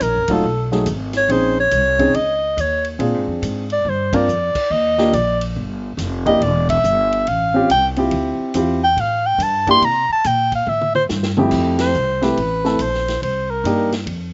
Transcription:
0.00 upright bass A#1, soprano saxophone A#4, hi-hat pedal, ride
0.15 upright bass F#1
0.28 upright bass D#1, upright piano F#3 A3 D#4 F4, kick, ride
0.33 soprano saxophone A4
0.44 upright bass B1
0.72 upright piano F#3 A3 D#4 G#4, snare
0.86 upright bass G#1, hi-hat pedal, ride
1.13 snare, ride
1.17 soprano saxophone C#5
1.29 upright bass A#1, upright piano C4 C#4 D#4 G#4, soprano saxophone C5, ride
1.60 soprano saxophone C#5
1.71 upright bass C2, hi-hat pedal, ride
1.99 upright piano C4 C#4 D#4 G#4, kick, ride
2.14 upright bass C#2, soprano saxophone D#5, ride
2.57 upright bass D#2, soprano saxophone C#5, hi-hat pedal, ride
2.85 ride
2.99 upright bass A#2, upright piano C4 D4 F4 G#4, ride
3.14 upright bass G#2
3.27 upright bass F2
3.42 upright bass G#2, hi-hat pedal, ride
3.70 soprano saxophone D5, ride
3.85 upright bass G2, mid tom
3.90 soprano saxophone C5
4.13 upright piano C4 D4 F4 A#4, soprano saxophone D5, kick, ride
4.27 upright bass F2, hi-hat pedal
4.55 muted upright bass stroke, kick, crash
4.70 upright bass D#2, soprano saxophone D#5
4.98 upright piano A#3 D4 F4 G4, snare
5.13 upright bass A#1, soprano saxophone D5, hi-hat pedal, ride
5.41 ride
5.56 upright bass G1
5.97 upright bass F1, snare, hi-hat pedal, ride
6.26 upright piano A#3 D4 E4 G4, soprano saxophone D#5, kick, ride
6.40 upright bass E1, soprano saxophone D5, ride
6.69 soprano saxophone E5, kick, ride
6.84 upright bass G1, hi-hat pedal
7.13 ride
7.27 upright bass A1, soprano saxophone F5, ride
7.54 upright piano C4 C#4 F4 G4
7.70 upright bass C2, soprano saxophone G5, hi-hat pedal, ride
7.96 upright piano C4 E4 F4 G4, ride
8.11 upright bass D2, ride
8.39 muted upright bass stroke
8.54 upright bass E2, upright piano C4 E4 F4 G4, hi-hat pedal, ride
8.84 soprano saxophone G5
8.96 upright bass A2, soprano saxophone F5, ride
9.26 soprano saxophone G5
9.38 upright bass G2, hi-hat pedal, ride
9.43 soprano saxophone A5
9.67 upright piano A#3 D4 E4 G4, soprano saxophone C6, kick, ride
9.81 upright bass C3, soprano saxophone A#5, ride
10.09 soprano saxophone A5, muted upright bass stroke
10.24 upright bass A#2, soprano saxophone G5, hi-hat pedal, ride
10.52 soprano saxophone F5, kick, ride
10.67 upright bass A2, soprano saxophone E5, mid tom
10.81 mid tom
10.95 soprano saxophone C5, mid tom
11.09 upright bass G2, snare, hi-hat pedal
11.23 snare
11.37 upright piano F2 A3 C4 E4 G4, mid tom
11.51 upright bass F2, kick, snare, crash
11.79 soprano saxophone C5, snare, ride
11.94 upright bass C2, hi-hat pedal
12.22 upright piano A3 C4 E4 G4, soprano saxophone B4, snare, ride
12.37 upright bass A1, ride
12.64 upright piano A3 C4 E4 A4, snare
12.79 upright bass A#1, soprano saxophone C5, hi-hat pedal, ride
12.94 snare
13.08 snare, ride
13.22 upright bass C2, soprano saxophone C5, ride
13.51 soprano saxophone A#4
13.64 upright bass G2, upright piano A#3 D4 D#4 G4, hi-hat pedal, ride
13.92 snare, ride
14.06 upright bass F2, ride

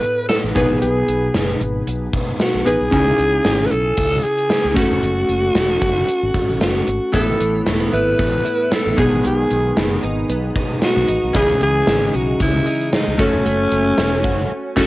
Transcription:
Already playing: synth keys A2 B3 E4 A4 B4, alto saxophone B4
0.03 closed hi-hat
0.29 alto saxophone A4, snare, closed hi-hat
0.44 fretless electric bass A1
0.55 fretless electric bass B1, synth keys B2 B3 D#4 G#4 B4, alto saxophone G#4, kick, closed hi-hat
0.70 fretless electric bass A1
0.81 fretless electric bass B1, alto saxophone G#4, closed hi-hat
1.08 fretless electric bass B1, closed hi-hat
1.34 fretless electric bass F#1, snare, closed hi-hat
1.61 fretless electric bass G#1, closed hi-hat
1.87 fretless electric bass B1, closed hi-hat
2.13 kick, closed hi-hat
2.40 alto saxophone F#4, snare, closed hi-hat
2.55 fretless electric bass B1
2.65 fretless electric bass A1, synth keys B3 D#4 G#4 B4, alto saxophone G#4, closed hi-hat
2.81 fretless electric bass B1
2.91 fretless electric bass C#2, synth keys C#3 C#4 D#4 E4 G#5, kick, closed hi-hat
3.19 fretless electric bass C#2, closed hi-hat
3.45 fretless electric bass G#1, snare, closed hi-hat
3.66 alto saxophone B4
3.71 fretless electric bass B1, alto saxophone A4, closed hi-hat
3.97 fretless electric bass C#2, kick, closed hi-hat
4.23 alto saxophone G#4, closed hi-hat
4.38 closed hi-hat
4.50 snare, closed hi-hat
4.65 fretless electric bass C#2
4.74 fretless electric bass F#1, synth keys A3 C#4 F#4 A4, alto saxophone F#4, kick, closed hi-hat
4.91 fretless electric bass E1
5.02 fretless electric bass F#1, closed hi-hat
5.29 fretless electric bass F#1, closed hi-hat
5.55 fretless electric bass E1, snare, closed hi-hat
5.82 fretless electric bass F#1, kick, closed hi-hat
6.08 closed hi-hat
6.23 fretless electric bass G#1
6.34 fretless electric bass G#1, kick, closed hi-hat
6.49 fretless electric bass A1, closed hi-hat
6.61 fretless electric bass F#1, alto saxophone F#4, snare, closed hi-hat
6.87 fretless electric bass G#1, closed hi-hat
7.12 fretless electric bass A1, synth keys A2 A3 B3 E4 A4, clean electric guitar E3, alto saxophone A4, kick, closed hi-hat
7.40 fretless electric bass A1, clean electric guitar E3, closed hi-hat
7.66 fretless electric bass E1, clean electric guitar A3, snare, closed hi-hat
7.80 clean electric guitar B3
7.93 fretless electric bass G#1, clean electric guitar E4, alto saxophone B4, closed hi-hat
8.18 fretless electric bass A1, clean electric guitar B3, kick, closed hi-hat
8.44 clean electric guitar E4, closed hi-hat
8.71 clean electric guitar B3, alto saxophone A4, snare, closed hi-hat
8.87 fretless electric bass A1
8.97 fretless electric bass B1, synth keys B2 G#3 B3 D#4 G#4, clean electric guitar D#3, alto saxophone G#4, kick, closed hi-hat
9.12 fretless electric bass A1
9.23 fretless electric bass B1, clean electric guitar D#3, alto saxophone G#4, closed hi-hat
9.50 fretless electric bass B1, clean electric guitar D#3, closed hi-hat
9.77 fretless electric bass F#1, clean electric guitar B3, snare, closed hi-hat
10.03 fretless electric bass G#1, clean electric guitar D#4, closed hi-hat
10.29 fretless electric bass B1, clean electric guitar B3, closed hi-hat
10.56 clean electric guitar D#4, kick, closed hi-hat
10.81 clean electric guitar B3, alto saxophone F#4, snare, closed hi-hat
10.96 fretless electric bass B1
11.08 fretless electric bass A1, clean electric guitar D#4, closed hi-hat
11.23 fretless electric bass B1
11.33 fretless electric bass C#2, synth keys C#3 E3 C#4 G#4 D#5, clean electric guitar E3, alto saxophone G#4, kick, closed hi-hat
11.61 fretless electric bass C#2, clean electric guitar E3, alto saxophone G#4, closed hi-hat
11.87 fretless electric bass G#1, clean electric guitar G#3, snare, closed hi-hat
12.14 fretless electric bass B1, clean electric guitar D#4, alto saxophone F#4, closed hi-hat
12.40 fretless electric bass C#2, clean electric guitar G#3, alto saxophone E4, kick, closed hi-hat
12.66 clean electric guitar D#4, closed hi-hat
12.81 closed hi-hat
12.93 clean electric guitar G#3, alto saxophone D#4, snare, closed hi-hat
13.07 fretless electric bass C#2
13.18 fretless electric bass F#1, synth keys A3 C#4 F#4 A4, clean electric guitar A3, alto saxophone C#4, kick, closed hi-hat
13.33 fretless electric bass E1
13.45 fretless electric bass F#1, clean electric guitar A3, closed hi-hat
13.72 fretless electric bass F#1, clean electric guitar A3, closed hi-hat
13.98 fretless electric bass E1, clean electric guitar C#4, snare, closed hi-hat
14.24 fretless electric bass F#1, clean electric guitar F#4, kick, closed hi-hat
14.76 fretless electric bass F#1, synth keys A3 C#4 F#4 A4, kick, snare, crash

